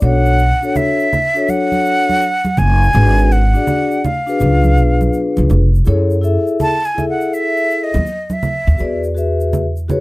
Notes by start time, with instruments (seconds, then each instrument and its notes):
0.00 upright bass B1, vibraphone D4 F#4 A4 C#5, flute F#5, shaker
0.26 shaker
0.39 shaker
0.61 vibraphone D4 F#4 A4 C#5, shaker
0.76 flute E5, low conga, shaker
0.99 shaker
1.13 low conga, shaker
1.34 vibraphone D4 F#4 A4 C#5, shaker
1.49 flute F#5, high conga, shaker
1.72 high conga, shaker
1.85 shaker
2.09 high conga, shaker
2.21 shaker
2.45 high conga, shaker
2.57 upright bass F#1, flute G#5, low conga, shaker
2.82 shaker
2.93 upright bass G#1, vibraphone D4 F#4 G#4 B4, shaker
3.18 shaker
3.31 flute F#5, shaker
3.54 vibraphone D4 F#4 G#4 D5, shaker
3.67 low conga, shaker
3.91 shaker
4.05 flute F5, low conga, shaker
4.26 vibraphone D4 F#4 G#4 B4, shaker
4.39 upright bass C#2, vibraphone D4 F4 G#4 B4, high conga, shaker
4.64 high conga, shaker
4.77 upright bass B1, shaker
5.01 high conga, shaker
5.13 shaker
5.37 upright bass C#2, high conga, shaker
5.50 upright bass F1, low conga, shaker
5.75 shaker
5.85 upright bass F#2, vibraphone E4 G#4 A4 C#5, shaker
6.10 shaker
6.21 vibraphone E4 G#4 A4 E5, shaker
6.47 shaker
6.60 flute A5, low conga, shaker
6.84 flute G#5, shaker
6.95 vibraphone E4 G#4 A4 E5, low conga, shaker
7.09 flute F#5
7.21 shaker
7.34 flute E5, shaker
7.57 shaker
7.70 shaker
7.84 flute D#5
7.94 upright bass D#2, high conga, shaker
8.06 shaker
8.30 flute E5, high conga, shaker
8.43 low conga, shaker
8.67 upright bass D#2, shaker
8.78 upright bass E2, vibraphone F#4 G#4 B4 D5, shaker
9.04 shaker
9.15 vibraphone F#4 G#4 B4 E5, shaker
9.40 shaker
9.53 low conga, shaker
9.77 shaker
9.88 vibraphone F#4 G#4 B4 C#5, low conga, shaker